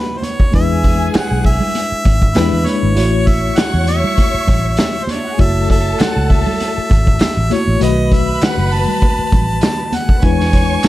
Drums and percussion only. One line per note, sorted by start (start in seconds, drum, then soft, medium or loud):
0.22 closed hi-hat medium
0.22 high conga medium
0.40 kick medium
0.53 kick loud
0.53 closed hi-hat medium
0.84 kick medium
0.84 closed hi-hat medium
1.14 snare loud
1.14 clap medium
1.14 closed hi-hat loud
1.14 high conga medium
1.44 kick medium
1.44 open hi-hat soft
1.44 muted conga soft
1.60 low conga medium
1.75 closed hi-hat medium
1.75 muted conga soft
2.05 kick medium
2.05 closed hi-hat medium
2.05 muted conga medium
2.22 kick medium
2.35 snare loud
2.35 clap medium
2.35 closed hi-hat medium
2.35 high conga medium
2.64 closed hi-hat medium
2.64 high conga medium
2.97 closed hi-hat medium
3.27 kick medium
3.27 closed hi-hat medium
3.56 snare loud
3.56 clap medium
3.56 closed hi-hat medium
3.56 high conga medium
3.87 closed hi-hat medium
3.87 muted conga soft
4.04 low conga medium
4.18 kick medium
4.18 closed hi-hat medium
4.18 muted conga soft
4.47 kick medium
4.47 closed hi-hat medium
4.47 muted conga medium
4.47 low conga medium
4.77 snare loud
4.77 clap medium
4.77 closed hi-hat medium
4.77 high conga medium
5.07 closed hi-hat medium
5.07 high conga medium
5.39 kick loud
5.39 closed hi-hat medium
5.70 kick medium
5.70 closed hi-hat medium
6.00 snare loud
6.00 clap medium
6.00 closed hi-hat loud
6.00 high conga medium
6.30 kick medium
6.30 open hi-hat soft
6.30 muted conga soft
6.47 low conga medium
6.60 closed hi-hat medium
6.60 muted conga soft
6.90 kick medium
6.90 closed hi-hat medium
6.90 muted conga medium
7.07 kick medium
7.19 snare loud
7.19 clap medium
7.19 closed hi-hat medium
7.19 high conga medium
7.51 closed hi-hat medium
7.51 high conga medium
7.81 closed hi-hat medium
8.12 kick medium
8.12 closed hi-hat medium
8.42 snare loud
8.42 clap medium
8.42 closed hi-hat medium
8.42 high conga medium
8.71 open hi-hat soft
8.88 low conga medium
9.02 kick medium
9.02 closed hi-hat medium
9.02 muted conga soft
9.32 kick medium
9.32 closed hi-hat medium
9.32 muted conga medium
9.32 low conga medium
9.61 snare loud
9.61 clap medium
9.61 closed hi-hat medium
9.61 high conga medium
9.92 closed hi-hat medium
9.92 high conga medium
10.09 kick medium
10.22 kick loud
10.22 closed hi-hat medium
10.40 snare soft
10.53 kick medium
10.53 closed hi-hat medium
10.83 snare loud
10.83 clap medium
10.83 closed hi-hat loud
10.83 high conga medium